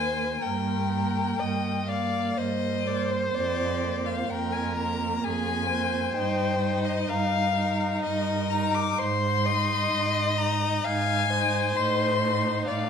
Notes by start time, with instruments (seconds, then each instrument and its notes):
Already playing: cello D#2, viola A#3, violin C5 G#5
0.42 cello G2, viola A#3, violin A#4 G5
0.91 viola A#3
1.38 cello G2, violin D#5
1.88 viola A#3, violin D5 F5
2.36 cello G2, violin C5 D#5
2.86 viola A#3, violin D5
3.11 violin C5
3.34 cello F2, violin D5
3.83 viola A#3
4.06 violin F5
4.29 cello F2, violin A#4 G5
4.53 violin G#5
4.77 viola A#3, violin A#5
5.24 cello F2, violin G#4 G#5
5.70 viola A#3, violin C5
6.15 cello G2, viola D#4, violin G5
6.61 viola D#4
6.85 violin D#5
7.08 cello G2, violin A#4 F5
7.58 viola D#4
8.03 cello G2, violin A#4 D#5
8.51 viola D#4, violin A#5
8.75 violin D6
8.99 cello G#2, violin C5 C6
9.45 viola D#4, violin D#5
9.92 cello G#2
10.38 viola D#4, violin A#5
10.84 cello G#2, violin F5 G#5
11.30 viola D#4, violin C5
11.76 cello A2, viola D#4, violin C6
12.22 viola D#4
12.68 cello A2, violin D5 F5